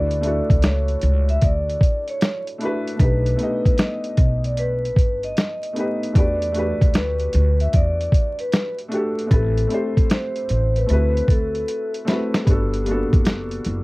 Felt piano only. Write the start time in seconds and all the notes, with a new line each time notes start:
Already playing: A3 D4 E4 F#4 B4 D5
0.21 A3 D4 E4
0.26 F#4 A4
2.58 A3 D4 E4
2.63 F#4 B4
2.96 A3 D4 D#4
3.01 G4 B4
3.36 A3 B3 D#4
3.41 G4 D#5
5.73 A3 B3 D#4
5.78 G4 B4
6.12 A3 D4 F#4
6.17 G4 B4
6.52 A3 D4 F#4
6.57 G4 B4
8.88 A3 D4 F#4
8.94 G4 A4
9.26 A3 C4 E4
9.32 G4 B4
9.67 A3 C4 E4
9.72 G4 C5
10.86 A3 C4 E4
10.91 F#4 B4
12.05 A3 C4 E4
12.10 F#4 B4
12.44 G3 B3 D4
12.49 F#4 A4
12.84 G3 A#3 D4
12.89 B3 F#4 A4